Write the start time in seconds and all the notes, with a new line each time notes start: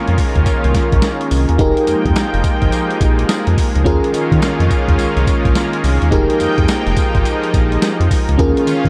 Already playing: D#3 G#3 A#3 C#4 F4 G#4 A#4
0.08 F2, closed hi-hat
0.18 kick, open hi-hat, tambourine
0.35 D#2, kick, closed hi-hat
0.46 C2, kick, closed hi-hat, tambourine
0.64 C2, closed hi-hat
0.74 kick, snare, closed hi-hat, tambourine
0.92 A#1, kick, closed hi-hat
1.02 snare, closed hi-hat, tambourine
1.21 closed hi-hat
1.31 C2, open hi-hat, tambourine
1.49 D#2, closed hi-hat
1.58 F1 F3 G#3 A#3 D#4 G4 G#4 A#4 G5, kick, closed hi-hat
1.77 closed hi-hat
1.87 F2, closed hi-hat, tambourine
2.05 F2, kick, closed hi-hat
2.16 snare, closed hi-hat, tambourine
2.34 F1, closed hi-hat
2.44 kick, closed hi-hat, tambourine
2.62 G#1, kick, closed hi-hat
2.72 closed hi-hat, tambourine
2.91 closed hi-hat
3.01 A#1, kick, closed hi-hat, tambourine
3.19 closed hi-hat
3.29 snare, closed hi-hat, tambourine
3.47 F2, closed hi-hat
3.58 kick, open hi-hat, tambourine
3.76 C#2, closed hi-hat
3.84 D#2 D#3 A#3 C#4 F4 G#4 A#4, kick, closed hi-hat
4.04 closed hi-hat
4.14 D#3, closed hi-hat, tambourine
4.32 D#3, kick, closed hi-hat
4.42 snare, closed hi-hat, tambourine
4.60 F2, closed hi-hat
4.70 kick, closed hi-hat, tambourine
4.88 D#2, kick, closed hi-hat
4.99 C2, closed hi-hat, tambourine
5.17 C2, closed hi-hat
5.27 kick, closed hi-hat, tambourine
5.45 A#1, kick, closed hi-hat
5.55 snare, closed hi-hat, tambourine
5.73 closed hi-hat
5.84 C2, open hi-hat, tambourine
6.02 D#2, closed hi-hat
6.11 F1 F3 D#4 G4 G#4 A#4 G5, kick, closed hi-hat
6.30 closed hi-hat
6.40 F2, closed hi-hat, tambourine
6.58 F2, kick, closed hi-hat
6.68 snare, closed hi-hat, tambourine
6.86 F1, closed hi-hat
6.97 kick, closed hi-hat, tambourine
7.15 G#1, kick, closed hi-hat
7.25 closed hi-hat, tambourine
7.44 closed hi-hat
7.54 A#1, kick, closed hi-hat, tambourine
7.72 closed hi-hat
7.82 snare, closed hi-hat, tambourine
8.00 F2, closed hi-hat
8.11 kick, open hi-hat, tambourine
8.29 C#2, closed hi-hat
8.38 D#2 D#3 C#4 F4 G#4 A#4, kick, closed hi-hat
8.57 closed hi-hat
8.67 D#3, closed hi-hat, tambourine
8.85 D#3, kick, closed hi-hat